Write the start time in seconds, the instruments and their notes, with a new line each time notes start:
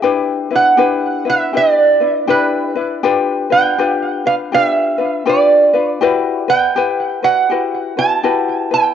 0.02 ukulele D4 E4 G4 B4
0.51 ukulele D4 E4 B4
0.56 resonator guitar played with a steel bar F#5
0.77 ukulele D4 E4 G4 B4
1.25 ukulele D4 E4 B4
1.30 resonator guitar played with a steel bar E5
1.53 ukulele D4 E4 G4 B4, resonator guitar played with a steel bar D5
2.00 ukulele D4 E4 B4
2.27 ukulele D4 E4 G4 B4, resonator guitar played with a steel bar B4
2.75 ukulele D4 E4 B4
3.03 ukulele D4 F4 G4 B4
3.50 ukulele D4 F4 B4, resonator guitar played with a steel bar G5
3.78 ukulele D4 F4 G4 B4
4.26 ukulele D4 F4 B4, resonator guitar played with a steel bar F5
4.52 ukulele D4 F4 G4 B4, resonator guitar played with a steel bar F5
4.65 resonator guitar played with a steel bar E5
4.98 ukulele D4 F4 B4
5.26 ukulele D4 F4 G4 B4, resonator guitar played with a steel bar D5
5.74 ukulele D4 F4 B4
6.01 ukulele E4 F#4 G4 B4
6.48 ukulele E4 B4, resonator guitar played with a steel bar G5
6.76 ukulele E4 G4 B4
7.23 ukulele E4 F#4 B4, resonator guitar played with a steel bar F#5
7.50 ukulele E4 F#4 G4 B4
7.97 ukulele E4 F#4 B4, resonator guitar played with a steel bar A5
8.23 ukulele E4 F#4 G4 B4
8.71 ukulele E4 B4, resonator guitar played with a steel bar G5